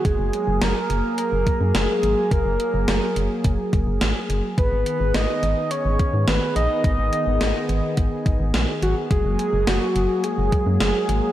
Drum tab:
HH |xxxxxxxx|xxxxxxxx|xxxxxxxx|xxxxxxxx|
SD |--o---o-|--o---o-|--o---o-|--o---o-|
BD |o----o--|o---oo--|o----o--|o---oo--|

HH |xxxxxxxx|
SD |--o---o-|
BD |o----o--|